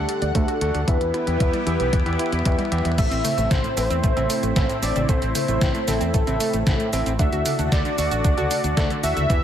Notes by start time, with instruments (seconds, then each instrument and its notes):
Already playing: tine electric piano D3 D4 A4 F#5, analog synth pad A3 D4 F#5, analog synth lead G4
0.09 synth arpeggio sound D5, closed hi-hat, mid tom
0.22 fingered electric bass D2, synth arpeggio sound D5, closed hi-hat
0.35 fingered electric bass D2, tine electric piano D3 D4 F#4 A4 F#5, synth arpeggio sound A3, analog synth lead A4, kick, closed hi-hat, mid tom
0.48 synth arpeggio sound F#4, closed hi-hat
0.61 fingered electric bass D2, synth arpeggio sound D4, tine electric piano D4 F#4 A4 F#5, closed hi-hat, mid tom
0.74 fingered electric bass D2, synth arpeggio sound D4, closed hi-hat, high tom
0.87 fingered electric bass E2, synth arpeggio sound E3, tine electric piano E3 B3 E4 G4 E5, analog synth pad B3 E4 G4, analog synth lead B4, kick, closed hi-hat, mid tom
1.01 synth arpeggio sound E2, fingered electric bass E2, closed hi-hat, mid tom
1.14 synth arpeggio sound E4, closed hi-hat, mid tom, high tom
1.27 fingered electric bass E2, tine electric piano E3 B3 E4 G4 E5, synth arpeggio sound E4, closed hi-hat, mid tom
1.40 fingered electric bass E2, synth arpeggio sound B2, kick, closed hi-hat, mid tom
1.53 synth arpeggio sound G3, closed hi-hat, mid tom
1.66 fingered electric bass E2, synth arpeggio sound E3, tine electric piano E3 B3 E4 G4 E5, closed hi-hat, mid tom
1.80 fingered electric bass B1, synth arpeggio sound E3, closed hi-hat, mid tom
1.93 fingered electric bass E2, synth arpeggio sound E3, kick, closed hi-hat, mid tom
2.00 mid tom
2.06 synth arpeggio sound E2, fingered electric bass E2, tine electric piano E3 B3 E4 G4 E5, closed hi-hat, mid tom
2.13 mid tom
2.19 synth arpeggio sound E4, closed hi-hat, mid tom
2.26 mid tom
2.32 fingered electric bass E2, synth arpeggio sound E4, closed hi-hat, mid tom
2.39 mid tom
2.45 fingered electric bass E2, synth arpeggio sound B2, tine electric piano E3 B3 E4 G4 E5, kick, closed hi-hat, mid tom
2.52 mid tom
2.59 synth arpeggio sound G3, closed hi-hat, mid tom
2.65 mid tom
2.72 fingered electric bass E2, synth arpeggio sound E3, tine electric piano B3 E4 G4 E5, closed hi-hat, mid tom
2.78 mid tom
2.85 fingered electric bass E2, synth arpeggio sound E3, closed hi-hat, mid tom
2.92 mid tom
2.98 fingered electric bass A1, tine electric piano A2 C4 E4 A4 E5, synth arpeggio sound A3, analog synth pad A3 C4 E4, analog synth lead E5, kick, closed hi-hat, crash, cabasa
3.11 fingered electric bass A1, synth arpeggio sound C4, closed hi-hat, cabasa
3.24 synth arpeggio sound A3, open hi-hat, high tom, cabasa
3.37 fingered electric bass A1, tine electric piano A2 C4 E4 A4 E5, synth arpeggio sound A3, closed hi-hat, cabasa
3.51 fingered electric bass A1, synth arpeggio sound E4, analog synth lead C5, kick, snare, closed hi-hat, cabasa
3.64 synth arpeggio sound A2, closed hi-hat, cabasa
3.77 fingered electric bass A1, tine electric piano A2 C4 E4 A4 E5, synth arpeggio sound C4, analog synth lead C5, open hi-hat, cabasa
3.90 fingered electric bass E2, synth arpeggio sound C4, closed hi-hat, cabasa
4.04 fingered electric bass A1, synth arpeggio sound A3, kick, closed hi-hat, cabasa
4.16 fingered electric bass A1, tine electric piano A2 C4 E4 A4 E5, synth arpeggio sound C4, closed hi-hat, high tom, cabasa
4.30 synth arpeggio sound A3, open hi-hat, cabasa
4.43 fingered electric bass A1, synth arpeggio sound A3, closed hi-hat, cabasa
4.56 fingered electric bass A1, tine electric piano A2 C4 E4 A4 E5, synth arpeggio sound E4, kick, snare, closed hi-hat, cabasa
4.69 synth arpeggio sound A2, closed hi-hat, cabasa
4.82 fingered electric bass A1, tine electric piano A2 C4 E4 A4 E5, synth arpeggio sound C4, analog synth lead D5, open hi-hat, cabasa
4.96 fingered electric bass A1, synth arpeggio sound C4, closed hi-hat, high tom, cabasa
5.09 fingered electric bass A1, tine electric piano A2 C4 E4 A4 E5, synth arpeggio sound A3, analog synth lead C5, kick, closed hi-hat, cabasa
5.22 fingered electric bass A1, synth arpeggio sound C4, closed hi-hat, cabasa
5.35 synth arpeggio sound A3, analog synth lead C5, open hi-hat, high tom, cabasa
5.48 fingered electric bass A1, tine electric piano A2 C4 E4 A4 E5, synth arpeggio sound A3, closed hi-hat, cabasa
5.61 fingered electric bass A1, synth arpeggio sound E4, kick, snare, closed hi-hat, cabasa
5.74 synth arpeggio sound A2, closed hi-hat, cabasa
5.88 fingered electric bass A1, tine electric piano A2 C4 E4 A4 E5, synth arpeggio sound C4, analog synth lead A4, snare, open hi-hat, cabasa
6.01 fingered electric bass E2, synth arpeggio sound C4, closed hi-hat, cabasa
6.14 fingered electric bass A1, synth arpeggio sound A3, analog synth lead A4, kick, closed hi-hat, cabasa
6.27 fingered electric bass A1, tine electric piano A2 C4 E4 A4 E5, synth arpeggio sound C4, closed hi-hat, high tom, cabasa
6.40 synth arpeggio sound A3, open hi-hat, cabasa
6.53 fingered electric bass A1, synth arpeggio sound A3, closed hi-hat, cabasa
6.66 fingered electric bass A1, tine electric piano A2 C4 E4 A4 E5, synth arpeggio sound E4, kick, snare, closed hi-hat, cabasa
6.80 synth arpeggio sound A2, closed hi-hat, cabasa
6.93 fingered electric bass A1, tine electric piano C4 E4 A4 E5, synth arpeggio sound C4, open hi-hat, cabasa
7.06 fingered electric bass A1, synth arpeggio sound C4, closed hi-hat, cabasa
7.19 fingered electric bass D2, tine electric piano D3 D4 F#4 A4 F#5, analog synth pad D4 F#4, synth arpeggio sound D4, analog synth lead E5, kick, closed hi-hat, cabasa
7.32 fingered electric bass D2, synth arpeggio sound F#4, closed hi-hat, cabasa
7.46 synth arpeggio sound D4, open hi-hat, high tom, cabasa
7.59 fingered electric bass D2, tine electric piano D3 D4 F#4 A4 F#5, synth arpeggio sound D4, closed hi-hat, cabasa
7.72 fingered electric bass D2, synth arpeggio sound A4, analog synth lead D5, kick, snare, closed hi-hat, cabasa
7.85 synth arpeggio sound D3, closed hi-hat, cabasa
7.98 fingered electric bass D2, tine electric piano D3 D4 F#4 A4 F#5, synth arpeggio sound F#4, analog synth lead D5, open hi-hat, cabasa
8.11 fingered electric bass A1, synth arpeggio sound F#4, closed hi-hat, cabasa
8.24 fingered electric bass D2, synth arpeggio sound D4, kick, closed hi-hat, cabasa
8.37 fingered electric bass D2, tine electric piano D3 D4 F#4 A4 F#5, synth arpeggio sound F#4, closed hi-hat, high tom, cabasa
8.51 synth arpeggio sound D4, open hi-hat, cabasa
8.64 fingered electric bass D2, synth arpeggio sound D4, closed hi-hat, cabasa
8.77 fingered electric bass D2, tine electric piano D3 D4 F#4 A4 F#5, synth arpeggio sound A4, kick, snare, closed hi-hat, cabasa
8.90 synth arpeggio sound D3, closed hi-hat, cabasa
9.03 fingered electric bass D2, tine electric piano D4 F#4 A4 F#5, synth arpeggio sound F#4, analog synth lead E5, open hi-hat, cabasa
9.17 fingered electric bass D2, synth arpeggio sound F#4, closed hi-hat, high tom, cabasa
9.30 fingered electric bass E2, synth arpeggio sound E3, tine electric piano E3 B3 E4 G4 E5, analog synth pad G3 B3 E4, kick, closed hi-hat, cabasa